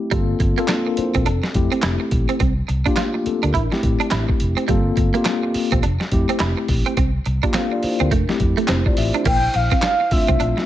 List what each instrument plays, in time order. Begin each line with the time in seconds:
Already playing: tine electric piano A3 C4 E4 G4
0.11 fingered electric bass G1, clean electric guitar G3, tine electric piano A#3 C4 F4 A4, kick, closed hi-hat
0.40 fingered electric bass G1, muted clean electric guitar stroke, kick, closed hi-hat
0.58 clean electric guitar A#3, tine electric piano A#3 C4 F4 A4, closed hi-hat
0.68 clean electric guitar D4, snare, clap, closed hi-hat
0.87 tine electric piano D4 A#4, muted clean electric guitar stroke
0.97 tine electric piano E4 C5, muted fingered electric bass stroke, closed hi-hat
1.14 fingered electric bass A#1, clean electric guitar C4, tine electric piano C4 A4, kick, closed hi-hat
1.26 fingered electric bass F1, clean electric guitar D4, closed hi-hat
1.43 muted clean electric guitar stroke, snare
1.54 fingered electric bass F2, tine electric piano A3 C4 E4 G4, kick, closed hi-hat
1.72 clean electric guitar C4, closed hi-hat
1.82 fingered electric bass F1, clean electric guitar E4, snare, clap, closed hi-hat
2.00 muted clean electric guitar stroke
2.11 fingered electric bass A#1, kick, closed hi-hat
2.29 clean electric guitar C4, closed hi-hat
2.40 fingered electric bass C2, clean electric guitar C4, kick, closed hi-hat
2.68 fingered electric bass C2, muted clean electric guitar stroke, closed hi-hat
2.86 tine electric piano A#3 D4 F4 G4, clean electric guitar D4, kick, closed hi-hat
2.96 tine electric piano A3 F4, clean electric guitar F4, snare, clap, closed hi-hat
3.14 tine electric piano A#3 G4, muted clean electric guitar stroke
3.26 tine electric piano C4 A4, muted fingered electric bass stroke, closed hi-hat
3.43 fingered electric bass D2, clean electric guitar D4, tine electric piano D4 A#4, closed hi-hat
3.54 fingered electric bass A1, clean electric guitar E4, kick, closed hi-hat
3.72 tine electric piano A3 C4 E4 G4, muted clean electric guitar stroke, snare
3.83 fingered electric bass A2, kick, closed hi-hat
4.00 clean electric guitar D4, closed hi-hat
4.11 fingered electric bass A1, clean electric guitar E4, snare, clap, closed hi-hat
4.29 muted clean electric guitar stroke, kick
4.40 fingered electric bass F1, closed hi-hat
4.57 clean electric guitar C4, closed hi-hat
4.68 fingered electric bass G1, clean electric guitar G3, tine electric piano A#3 C4 F4 A4, kick, closed hi-hat
4.97 fingered electric bass G1, muted clean electric guitar stroke, kick, closed hi-hat
5.14 clean electric guitar A#3, tine electric piano A#3 C4 F4 G4, closed hi-hat
5.25 clean electric guitar D4, snare, clap, closed hi-hat
5.43 muted clean electric guitar stroke
5.54 muted fingered electric bass stroke, open hi-hat
5.72 fingered electric bass A#1, clean electric guitar C4, kick, closed hi-hat
5.83 fingered electric bass F1, clean electric guitar D4, closed hi-hat
6.00 muted clean electric guitar stroke, snare
6.12 fingered electric bass F2, tine electric piano A3 C4 E4 G4, kick, closed hi-hat
6.29 clean electric guitar C4, closed hi-hat
6.39 fingered electric bass F1, clean electric guitar E4, snare, clap, closed hi-hat
6.57 muted clean electric guitar stroke
6.68 fingered electric bass A#1, kick, open hi-hat
6.86 clean electric guitar C4, closed hi-hat
6.97 fingered electric bass C2, clean electric guitar C4, kick, closed hi-hat
7.26 fingered electric bass C2, muted clean electric guitar stroke, closed hi-hat
7.43 tine electric piano A#3 D4 F4 G4, clean electric guitar D4, kick, closed hi-hat
7.53 clean electric guitar C4, tine electric piano A4 F5, snare, clap, closed hi-hat
7.72 tine electric piano F4 D5, muted clean electric guitar stroke
7.83 tine electric piano E4 C5, muted fingered electric bass stroke, open hi-hat
8.00 fingered electric bass D2, clean electric guitar C4, tine electric piano D4 A#4, closed hi-hat
8.11 fingered electric bass F1, clean electric guitar A3, kick, closed hi-hat
8.29 tine electric piano A3 C4 E4 G4, muted clean electric guitar stroke, snare
8.40 fingered electric bass F2, kick, closed hi-hat
8.57 clean electric guitar A3, closed hi-hat
8.68 fingered electric bass F1, clean electric guitar C4, tine electric piano E4 C5, snare, clap, closed hi-hat
8.86 tine electric piano F4 D5, muted clean electric guitar stroke, kick
8.97 fingered electric bass A1, tine electric piano G4 E5, open hi-hat
9.14 clean electric guitar D4, tine electric piano E4 C5, closed hi-hat
9.25 fingered electric bass A#1, clean electric guitar A#3, soft synth lead G5, kick, closed hi-hat, crash
9.54 fingered electric bass A#1, soft synth lead F5, muted clean electric guitar stroke, closed hi-hat
9.71 clean electric guitar C4, kick, closed hi-hat
9.82 clean electric guitar D4, soft synth lead F5, snare, clap, closed hi-hat
10.00 muted clean electric guitar stroke
10.11 tine electric piano A3 C4 D4 F4, soft synth lead E5, muted fingered electric bass stroke, kick, open hi-hat
10.28 fingered electric bass C2, clean electric guitar C4, kick, closed hi-hat
10.40 fingered electric bass A#1, clean electric guitar D4, closed hi-hat
10.57 muted clean electric guitar stroke, snare